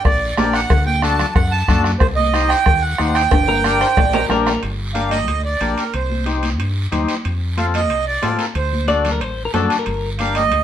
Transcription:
0.04 A#1 D5, bombo low, bombo rim, cowbell, high conga, long guiro
0.37 A#1 D4 G4 A#4 D5, bombo rim, high conga, low timbale, short guiro
0.53 F#5, bombo rim, short guiro
0.70 D2, bombo low, bombo rim, cowbell, long guiro
0.86 G5, high conga
1.02 D4 F#4 A4 A5, bombo rim, high conga, short guiro
1.19 bombo rim, low conga, short guiro
1.35 F#2 F#5, bombo low, bombo rim, cowbell, long guiro
1.51 A5
1.68 F#2 D4 F#4 A4, bombo low, bombo rim, high conga, low conga, short guiro
1.84 bombo rim, short guiro
1.99 C2 C5, bombo low, bombo rim, cowbell, high conga, long guiro
2.16 D#5, high conga
2.33 D#4 G4 C5, bombo rim, high conga, short guiro
2.48 G5, bombo rim, short guiro
2.66 D#2, bombo low, bombo rim, cowbell, high conga, long guiro
2.82 F#5
2.98 D#2 D#4 G4 C5, bombo rim, high conga, short guiro
3.14 G5, bombo rim, short guiro
3.31 G1, bombo low, bombo rim, cowbell, high conga, high timbale, long guiro
3.48 A#4, high conga, high timbale
3.64 D4 G4 A#4, bombo rim, high conga, short guiro
3.81 C5, bombo rim, short guiro
3.97 A#1 D5, bombo low, bombo rim, cowbell, high conga, low timbale, long guiro
4.13 A#4, low timbale
4.29 A#1 D4 G4 A#4, bombo rim, high conga, low conga, low timbale, short guiro
4.46 bombo rim, low timbale, short guiro
4.63 G1, high timbale, long guiro
4.94 D4 G4 A#4 F5, high conga, high timbale, short guiro
5.11 D#5, high conga, high timbale, short guiro
5.28 D2, high timbale, long guiro
5.45 D5
5.61 A#1 D4 G4 A#4, high conga, high timbale, short guiro
5.78 A#4, high timbale, short guiro
5.94 C2 C5, high conga, high timbale, long guiro
6.10 high conga
6.26 D#4 G4 C5, high conga, high timbale, short guiro
6.43 high conga, high timbale, short guiro
6.59 G2, high conga, high timbale, long guiro
6.92 D#2 D#4 G4 C5, high conga, low conga, high timbale, short guiro
7.08 high timbale, short guiro
7.25 F2, high conga, high timbale, long guiro
7.57 C4 F4 A4 F5, high conga, high timbale, short guiro
7.74 D#5, high conga, high timbale, short guiro
7.90 C2, high conga, high timbale, long guiro
8.07 D5
8.22 A2 C4 F4 A4, high conga, high timbale, low timbale, short guiro
8.39 A#4, high timbale, short guiro
8.55 D2 C5, high conga, high timbale, long guiro
8.73 high conga
8.88 D4 F#4 A4 D5, high conga, high timbale, short guiro
9.05 high conga, low conga, high timbale, short guiro
9.12 A#4
9.21 A1 C5, high conga, high timbale, long guiro
9.45 A#4
9.54 F#2 D4 F#4 A4, high conga, low conga, high timbale, low timbale, short guiro
9.70 high timbale, short guiro
9.79 A#4
9.86 G1, high conga, high timbale, long guiro
10.19 D4 G4 A#4 F5, high conga, high timbale, short guiro
10.35 D#5, high conga, high timbale, short guiro
10.52 D2, high timbale, long guiro

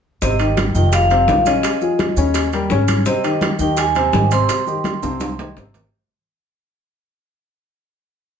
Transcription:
0.22 G#1 C3 C4 C5 D#5, high bongo, high conga, maracas
0.39 D#3 D#4 G4, high conga, high timbale, maracas
0.57 high bongo, high conga, high timbale, maracas
0.75 F1 D#3 D#4 F4 G5, high conga, maracas
0.92 F5, high bongo, high conga, high timbale, maracas
1.10 C3 C4 C5 F5, high conga, high timbale, maracas
1.28 A#1 D#3 D#4 F4, high bongo, low bongo, high conga, low timbale, maracas
1.45 C#3 C#4 C#5 D#5, high conga, high timbale, maracas
1.63 high bongo, high conga, high timbale, maracas
1.81 F3 F4 G#4, high bongo, high conga, maracas
1.99 high bongo, high conga, high timbale, maracas
2.17 D#2 C#3 C#4 C#5, high bongo, high conga, maracas
2.34 high bongo, high conga, high timbale, maracas
2.52 G3 G4 A#4, high conga, high timbale, maracas
2.70 G#1 C#3 C#4 C#5, high bongo, low bongo, high conga, maracas
2.88 high bongo, high conga, high timbale, maracas
3.06 C3 C4 C5 D#5, high bongo, high conga, maracas
3.24 D#3 D#4 G4, high conga, high timbale, maracas
3.41 high bongo, high conga, high timbale, maracas
3.59 D#2 D#3 D#4 G4 G5, high conga, maracas
3.77 G#5, high bongo, high conga, high timbale, maracas
3.95 C3 C4 C5, high conga, high timbale, maracas
4.12 G#1 D#3 D#4 G4, high bongo, low bongo, high conga, maracas
4.31 C3 C4 C5 C6, high timbale, maracas
4.49 high bongo, high conga, high timbale, maracas
4.66 D#3 D#4 G4, high bongo, high conga, maracas
4.84 high bongo, high conga, high timbale, maracas
5.02 C2 C3 C4 C5, high bongo, high conga, high timbale, maracas
5.20 high bongo, high conga, high timbale, maracas
5.38 D#3 D#4 G4, high conga, low timbale, maracas
5.56 G#1 C3 C4 C5, high bongo, low bongo, low timbale, maracas
5.74 high bongo, low conga, low timbale, maracas

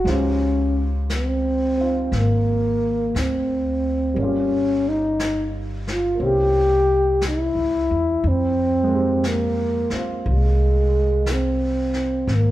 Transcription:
Already playing: F#4
0.04 C#2 G#3 D#4 F4 C5, brush sweep, snare
0.09 C#4 G4
1.10 brush sweep, snare, hi-hat pedal
1.14 C4
1.77 C4 D#4 F4
2.12 G#1, brush sweep, snare
2.18 A#3
3.15 D2, brush sweep, snare, hi-hat pedal
3.19 C4
4.14 G1 G3 A#3
4.18 C#4, brush sweep
4.22 C#4 F4 G4
4.88 D#4
5.19 brush sweep, snare, hi-hat pedal
5.87 snare
5.92 F4
6.15 A#3 C4
6.20 C2 C#4 E4, brush sweep
6.25 G4
7.21 brush sweep, snare, hi-hat pedal
7.27 E4
7.55 C#2
7.91 E2
8.22 F2, brush sweep
8.28 C4
8.83 G#3 A#3
8.89 C4 D#4
8.95 G4
9.24 brush sweep, snare, hi-hat pedal
9.29 A#3
9.90 A#3 C4, muted upright bass stroke, snare
9.95 F4
10.23 C2, brush sweep
10.31 G#3
11.26 brush sweep, snare, hi-hat pedal
11.32 C4
11.93 snare
12.27 G#1, brush sweep, snare
12.35 A#3

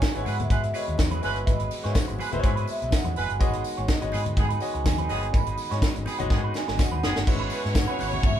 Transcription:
Already playing: E3 G#3 B3 E4 F#4 B4 C#5 G#5
0.02 muted clean electric guitar stroke, kick, snare, tambourine, high conga
0.15 G#1 G#3 E4 B4 C#5, muted clean electric guitar stroke, closed hi-hat
0.20 F#5
0.25 G#2 G#3 E4 G#4 B4, open hi-hat, tambourine, muted conga
0.39 muted clean electric guitar stroke, closed hi-hat, low conga
0.50 G#2 G#3 E4 B4 E5, kick, closed hi-hat, tambourine, muted conga, low conga
0.63 muted clean electric guitar stroke, closed hi-hat
0.74 G#3 E4 G#4 B4 C#5 D#5, open hi-hat, tambourine
0.87 D#2, muted clean electric guitar stroke, closed hi-hat
0.98 E2, kick, snare, tambourine, high conga
1.11 E4 G#4 B4, closed hi-hat, high conga
1.21 G1 G#3 E4 B4 C#5, muted clean electric guitar stroke, open hi-hat, tambourine
1.35 muted clean electric guitar stroke, closed hi-hat
1.46 G#1 E4 G#4 B4 D#5, kick, closed hi-hat, tambourine
1.60 closed hi-hat
1.71 muted clean electric guitar stroke, open hi-hat, tambourine, muted conga
1.83 G#2 G#3 E4 G#4 B4 C5 C#5, snare, closed hi-hat
1.91 C#5
1.95 muted clean electric guitar stroke, kick, snare, tambourine, high conga
2.08 G#1, muted clean electric guitar stroke, closed hi-hat
2.19 G#3 E4 G#4 B4, open hi-hat, tambourine, muted conga
2.32 G#1 G#3 E4 B4 C5, muted clean electric guitar stroke, closed hi-hat, low conga
2.39 G#3 E4 B4 C#5, muted clean electric guitar stroke
2.44 G#2, kick, closed hi-hat, muted conga
2.56 E4 G#4 B4, closed hi-hat
2.67 E5, muted clean electric guitar stroke, open hi-hat, tambourine
2.81 B1, muted clean electric guitar stroke, closed hi-hat
2.91 G#3 E4 B4 D#5 F#5, muted clean electric guitar stroke, kick, snare, tambourine, high conga
3.05 E2, muted clean electric guitar stroke, closed hi-hat, high conga
3.15 F#1 G#3 E4 B4 G#5, open hi-hat
3.29 G1, muted clean electric guitar stroke, closed hi-hat
3.39 G#1 D#3 G#3 B3 D#4 F#4 G#4 B4 C#5 D#5 F#5, kick, closed hi-hat, tambourine
3.53 closed hi-hat
3.64 muted clean electric guitar stroke, open hi-hat, tambourine
3.77 G#1 D#4 G#4 C#5, closed hi-hat
3.88 D#5, kick, snare, tambourine, high conga
4.01 G#1 G#3 F#4 C#5 D#5, muted clean electric guitar stroke, closed hi-hat
4.12 G#2 D#3 B3 D#4 G#4 B4, open hi-hat, tambourine, muted conga
4.25 muted clean electric guitar stroke, closed hi-hat, low conga
4.37 G#2 D#3 B3 G#4 G#5, muted clean electric guitar stroke, kick, closed hi-hat, tambourine, muted conga, low conga
4.49 D#4 G#4 B4, closed hi-hat
4.60 G#3 F#4 C#5 D#5, muted clean electric guitar stroke, open hi-hat, tambourine
4.74 C#2, muted clean electric guitar stroke, closed hi-hat
4.84 D#2 G#5, muted clean electric guitar stroke, kick, snare, tambourine, high conga
4.98 D#4 G#4 B4, closed hi-hat, high conga
5.09 G1 D#3 G#3 B3 D#4 F#4 G#4 B4 C#5 D#5, open hi-hat, tambourine
5.22 muted clean electric guitar stroke, closed hi-hat
5.32 G#1 D#4 G#4 B4 B5, kick, closed hi-hat, tambourine
5.46 closed hi-hat
5.57 muted clean electric guitar stroke, open hi-hat, tambourine, muted conga
5.70 G#2 G#3 D#4 F#4 G#4 C#5 D#5, snare, closed hi-hat
5.82 muted clean electric guitar stroke, kick, snare, tambourine, high conga
5.95 G#1, muted clean electric guitar stroke, closed hi-hat
6.06 D#3 B3 D#4 G#4 B4, open hi-hat, tambourine, muted conga
6.18 G#1 G#3 F#4 C#5 D#5, muted clean electric guitar stroke, closed hi-hat, low conga
6.30 G#2 D#3 B3 G#4, muted clean electric guitar stroke, kick, snare, muted conga
6.44 D#4 G#4 B4
6.54 G#5, muted clean electric guitar stroke, snare, tambourine
6.68 G#1, muted clean electric guitar stroke, snare
6.78 G#3 F#4 C#5 D#5 F#5, muted clean electric guitar stroke, kick, snare, tambourine, high conga
6.92 D#2 D#4 G#4 B4, high conga
7.03 F#1 D#3 B3 G#4, snare, tambourine
7.16 G1, muted clean electric guitar stroke, snare
7.26 G#1 E3 G#3 B3 C#4 E4 F#4 B4 C#5, muted clean electric guitar stroke, kick, crash, tambourine
7.40 E4 G#4 B4
7.50 E4 G#4 B4, open hi-hat, tambourine, muted conga
7.64 G#2, muted clean electric guitar stroke, snare
7.75 F#5, muted clean electric guitar stroke, kick, snare, closed hi-hat, tambourine, high conga
7.88 G#3 E4 G#4 B4 C#5
7.99 G#1 E4 G#4 B4, open hi-hat, tambourine, muted conga
8.12 muted clean electric guitar stroke, low conga
8.23 G#2 E5, kick, closed hi-hat, tambourine, muted conga, low conga
8.36 muted clean electric guitar stroke

